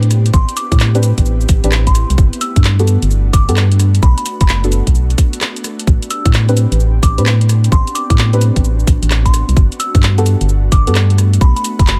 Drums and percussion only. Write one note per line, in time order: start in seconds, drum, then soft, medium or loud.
0.03 closed hi-hat medium
0.11 cross-stick soft
0.11 open hi-hat medium
0.11 shaker medium
0.26 closed hi-hat medium
0.26 shaker soft
0.34 kick loud
0.34 shaker soft
0.49 closed hi-hat medium
0.49 shaker soft
0.57 open hi-hat loud
0.57 shaker medium
0.72 kick loud
0.72 closed hi-hat medium
0.72 shaker soft
0.80 clap loud
0.80 shaker soft
0.95 closed hi-hat soft
0.95 shaker soft
1.03 open hi-hat medium
1.03 shaker medium
1.18 kick medium
1.18 closed hi-hat medium
1.18 shaker soft
1.26 shaker soft
1.41 shaker soft
1.49 kick loud
1.49 open hi-hat loud
1.49 shaker medium
1.64 closed hi-hat medium
1.64 shaker soft
1.72 cross-stick soft
1.72 clap loud
1.72 shaker soft
1.87 kick medium
1.87 closed hi-hat medium
1.87 shaker soft
1.95 cross-stick soft
1.95 open hi-hat medium
1.95 shaker medium
2.10 closed hi-hat medium
2.10 shaker soft
2.18 kick loud
2.18 shaker soft
2.33 closed hi-hat medium
2.33 shaker soft
2.41 open hi-hat loud
2.41 shaker medium
2.56 kick loud
2.56 closed hi-hat medium
2.56 shaker soft
2.64 clap loud
2.64 shaker soft
2.79 closed hi-hat soft
2.79 shaker soft
2.87 open hi-hat medium
2.87 shaker medium
3.02 closed hi-hat medium
3.02 shaker soft
3.11 shaker soft
3.33 kick loud
3.33 open hi-hat loud
3.33 shaker medium
3.49 closed hi-hat medium
3.49 shaker soft
3.57 cross-stick medium
3.57 clap loud
3.57 shaker soft
3.72 closed hi-hat medium
3.79 cross-stick soft
3.79 open hi-hat medium
3.79 shaker medium
3.95 closed hi-hat medium
3.95 shaker soft
4.03 kick loud
4.03 shaker soft
4.18 closed hi-hat medium
4.18 shaker soft
4.26 open hi-hat loud
4.26 shaker medium
4.41 kick loud
4.41 closed hi-hat medium
4.41 shaker soft
4.49 clap loud
4.49 shaker soft
4.64 closed hi-hat soft
4.64 shaker soft
4.72 open hi-hat medium
4.72 shaker medium
4.87 kick medium
4.87 closed hi-hat medium
4.87 shaker soft
4.95 shaker soft
5.10 closed hi-hat soft
5.10 shaker soft
5.18 kick loud
5.18 open hi-hat loud
5.18 shaker medium
5.33 closed hi-hat medium
5.33 shaker soft
5.41 cross-stick medium
5.41 clap loud
5.41 shaker soft
5.56 closed hi-hat medium
5.56 shaker soft
5.64 cross-stick soft
5.64 open hi-hat loud
5.64 shaker medium
5.79 closed hi-hat medium
5.79 shaker soft
5.87 kick loud
5.87 shaker soft
6.02 closed hi-hat medium
6.02 shaker soft
6.10 open hi-hat loud
6.10 shaker medium
6.25 kick loud
6.25 closed hi-hat medium
6.25 shaker soft
6.34 clap loud
6.34 shaker soft
6.49 closed hi-hat soft
6.49 shaker soft
6.57 open hi-hat medium
6.57 shaker medium
6.72 closed hi-hat medium
6.72 shaker soft
6.80 shaker soft
7.03 kick loud
7.03 open hi-hat loud
7.03 shaker medium
7.18 closed hi-hat medium
7.18 shaker soft
7.26 cross-stick medium
7.26 clap loud
7.26 shaker soft
7.41 closed hi-hat medium
7.49 cross-stick soft
7.49 open hi-hat loud
7.49 shaker medium
7.64 closed hi-hat medium
7.64 shaker soft
7.72 kick loud
7.72 shaker soft
7.87 closed hi-hat medium
7.87 shaker soft
7.95 open hi-hat loud
7.95 shaker medium
8.10 kick loud
8.10 closed hi-hat medium
8.10 shaker soft
8.18 clap loud
8.18 shaker soft
8.33 closed hi-hat soft
8.33 shaker soft
8.41 open hi-hat medium
8.41 shaker medium
8.56 kick medium
8.56 closed hi-hat medium
8.56 shaker soft
8.64 shaker soft
8.79 shaker soft
8.87 kick loud
8.87 open hi-hat loud
8.87 shaker medium
9.03 closed hi-hat medium
9.03 shaker soft
9.11 cross-stick medium
9.11 clap loud
9.11 shaker soft
9.26 kick medium
9.26 closed hi-hat medium
9.26 shaker soft
9.34 cross-stick soft
9.34 open hi-hat loud
9.34 shaker medium
9.49 closed hi-hat medium
9.49 shaker soft
9.57 kick loud
9.57 shaker soft
9.72 closed hi-hat soft
9.72 shaker soft
9.80 open hi-hat loud
9.80 shaker medium
9.95 kick loud
9.95 closed hi-hat medium
9.95 shaker soft
10.03 clap loud
10.03 shaker soft
10.18 closed hi-hat soft
10.18 shaker soft
10.26 open hi-hat medium
10.26 shaker medium
10.41 closed hi-hat medium
10.41 shaker soft
10.49 shaker soft
10.72 kick loud
10.72 open hi-hat loud
10.72 shaker medium
10.87 closed hi-hat medium
10.87 shaker soft
10.95 cross-stick medium
10.95 clap loud
10.95 shaker soft
11.10 closed hi-hat medium
11.18 cross-stick soft
11.18 open hi-hat medium
11.18 shaker medium
11.33 closed hi-hat medium
11.33 shaker soft
11.41 kick loud
11.41 shaker soft
11.56 closed hi-hat medium
11.56 shaker soft
11.64 open hi-hat loud
11.64 shaker medium
11.79 kick loud
11.79 closed hi-hat medium
11.79 shaker soft
11.87 clap loud
11.87 shaker soft